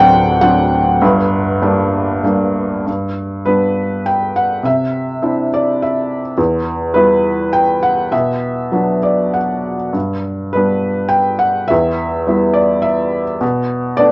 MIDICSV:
0, 0, Header, 1, 2, 480
1, 0, Start_track
1, 0, Key_signature, 1, "major"
1, 0, Tempo, 587084
1, 836, Time_signature, 3, 2, 24, 8
1, 836, Tempo, 609756
1, 3236, Tempo, 579151
1, 6596, Tempo, 601202
1, 8996, Tempo, 571973
1, 11502, End_track
2, 0, Start_track
2, 0, Title_t, "Felt piano"
2, 0, Program_c, 0, 0
2, 0, Control_c, 0, 64, 127
2, 0, Note_on_c, 0, 26, 67
2, 0, Note_on_c, 0, 38, 78
2, 0, Note_on_c, 0, 54, 54
2, 0, Note_on_c, 0, 60, 51
2, 0, Note_on_c, 0, 62, 65
2, 0, Note_on_c, 0, 78, 110
2, 0, Note_on_c, 0, 79, 120
2, 328, Note_off_c, 0, 54, 0
2, 332, Note_off_c, 0, 60, 0
2, 336, Note_off_c, 0, 62, 0
2, 338, Note_off_c, 0, 78, 0
2, 338, Note_on_c, 0, 78, 94
2, 340, Note_on_c, 0, 54, 55
2, 344, Note_on_c, 0, 60, 52
2, 348, Note_on_c, 0, 62, 58
2, 355, Note_off_c, 0, 79, 0
2, 796, Note_off_c, 0, 26, 0
2, 796, Note_off_c, 0, 38, 0
2, 815, Note_off_c, 0, 54, 0
2, 818, Note_off_c, 0, 60, 0
2, 820, Note_off_c, 0, 62, 0
2, 834, Note_on_c, 0, 31, 69
2, 834, Note_on_c, 0, 43, 78
2, 846, Control_c, 0, 64, 0
2, 961, Control_c, 0, 64, 127
2, 1306, Note_on_c, 0, 55, 55
2, 1307, Note_on_c, 0, 58, 51
2, 1311, Note_on_c, 0, 62, 61
2, 1764, Note_off_c, 0, 78, 0
2, 1778, Note_off_c, 0, 55, 0
2, 1780, Note_off_c, 0, 58, 0
2, 1786, Note_off_c, 0, 62, 0
2, 1790, Note_on_c, 0, 55, 54
2, 1792, Note_on_c, 0, 58, 50
2, 1798, Note_on_c, 0, 62, 63
2, 2258, Note_off_c, 0, 31, 0
2, 2258, Note_off_c, 0, 43, 0
2, 2270, Note_off_c, 0, 55, 0
2, 2271, Note_off_c, 0, 58, 0
2, 2274, Note_off_c, 0, 62, 0
2, 2283, Note_on_c, 0, 43, 46
2, 2301, Control_c, 0, 64, 0
2, 2441, Control_c, 0, 64, 127
2, 2750, Note_on_c, 0, 71, 67
2, 2756, Note_on_c, 0, 55, 36
2, 2761, Note_on_c, 0, 59, 33
2, 2762, Note_on_c, 0, 62, 40
2, 3229, Note_on_c, 0, 79, 74
2, 3241, Note_off_c, 0, 71, 0
2, 3457, Note_off_c, 0, 79, 0
2, 3477, Note_on_c, 0, 78, 73
2, 3680, Note_off_c, 0, 43, 0
2, 3681, Note_off_c, 0, 55, 0
2, 3684, Note_off_c, 0, 59, 0
2, 3684, Note_off_c, 0, 62, 0
2, 3700, Note_off_c, 0, 78, 0
2, 3702, Note_on_c, 0, 48, 54
2, 3721, Note_on_c, 0, 76, 76
2, 3727, Control_c, 0, 64, 0
2, 3859, Control_c, 0, 64, 127
2, 4191, Note_on_c, 0, 60, 40
2, 4196, Note_on_c, 0, 62, 37
2, 4197, Note_on_c, 0, 64, 46
2, 4405, Note_off_c, 0, 76, 0
2, 4452, Note_on_c, 0, 74, 67
2, 4690, Note_off_c, 0, 74, 0
2, 4690, Note_on_c, 0, 76, 67
2, 5015, Note_off_c, 0, 76, 0
2, 5111, Note_off_c, 0, 48, 0
2, 5121, Note_off_c, 0, 60, 0
2, 5123, Note_off_c, 0, 62, 0
2, 5124, Note_off_c, 0, 64, 0
2, 5148, Note_on_c, 0, 40, 61
2, 5164, Control_c, 0, 64, 0
2, 5306, Control_c, 0, 64, 127
2, 5613, Note_on_c, 0, 71, 74
2, 5627, Note_on_c, 0, 55, 44
2, 5627, Note_on_c, 0, 59, 42
2, 5631, Note_on_c, 0, 64, 50
2, 6071, Note_off_c, 0, 71, 0
2, 6102, Note_on_c, 0, 79, 89
2, 6333, Note_off_c, 0, 79, 0
2, 6350, Note_on_c, 0, 78, 81
2, 6562, Note_off_c, 0, 40, 0
2, 6567, Note_off_c, 0, 55, 0
2, 6568, Note_off_c, 0, 59, 0
2, 6570, Note_off_c, 0, 64, 0
2, 6578, Note_off_c, 0, 78, 0
2, 6593, Note_on_c, 0, 76, 78
2, 6597, Note_on_c, 0, 47, 53
2, 6608, Control_c, 0, 64, 0
2, 6730, Control_c, 0, 64, 127
2, 7070, Note_on_c, 0, 54, 39
2, 7074, Note_on_c, 0, 59, 35
2, 7081, Note_on_c, 0, 62, 43
2, 7285, Note_off_c, 0, 76, 0
2, 7319, Note_on_c, 0, 74, 58
2, 7564, Note_on_c, 0, 78, 60
2, 7572, Note_off_c, 0, 74, 0
2, 7905, Note_off_c, 0, 78, 0
2, 8020, Note_off_c, 0, 47, 0
2, 8020, Note_off_c, 0, 54, 0
2, 8022, Note_off_c, 0, 59, 0
2, 8026, Note_off_c, 0, 62, 0
2, 8037, Note_on_c, 0, 43, 48
2, 8061, Control_c, 0, 64, 0
2, 8181, Control_c, 0, 64, 127
2, 8512, Note_on_c, 0, 71, 66
2, 8533, Note_on_c, 0, 55, 39
2, 8537, Note_on_c, 0, 59, 33
2, 8540, Note_on_c, 0, 62, 40
2, 8957, Note_off_c, 0, 71, 0
2, 8958, Note_on_c, 0, 79, 83
2, 9211, Note_on_c, 0, 78, 78
2, 9228, Note_off_c, 0, 79, 0
2, 9441, Note_off_c, 0, 43, 0
2, 9454, Note_off_c, 0, 55, 0
2, 9454, Note_on_c, 0, 76, 83
2, 9456, Note_off_c, 0, 59, 0
2, 9457, Note_off_c, 0, 62, 0
2, 9475, Note_off_c, 0, 78, 0
2, 9478, Note_on_c, 0, 40, 59
2, 9494, Control_c, 0, 64, 0
2, 9629, Control_c, 0, 64, 127
2, 9952, Note_on_c, 0, 55, 45
2, 9958, Note_on_c, 0, 59, 39
2, 9963, Note_on_c, 0, 64, 50
2, 10174, Note_on_c, 0, 74, 73
2, 10210, Note_off_c, 0, 76, 0
2, 10413, Note_on_c, 0, 76, 77
2, 10432, Note_off_c, 0, 74, 0
2, 10756, Note_off_c, 0, 76, 0
2, 10879, Note_off_c, 0, 40, 0
2, 10880, Note_off_c, 0, 55, 0
2, 10883, Note_off_c, 0, 59, 0
2, 10886, Note_off_c, 0, 64, 0
2, 10909, Note_on_c, 0, 47, 66
2, 10927, Control_c, 0, 64, 0
2, 11072, Control_c, 0, 64, 127
2, 11379, Note_on_c, 0, 74, 86
2, 11395, Note_on_c, 0, 57, 45
2, 11396, Note_on_c, 0, 59, 42
2, 11401, Note_on_c, 0, 62, 52
2, 11502, Note_off_c, 0, 47, 0
2, 11502, Note_off_c, 0, 57, 0
2, 11502, Note_off_c, 0, 59, 0
2, 11502, Note_off_c, 0, 62, 0
2, 11502, Note_off_c, 0, 74, 0
2, 11502, End_track
0, 0, End_of_file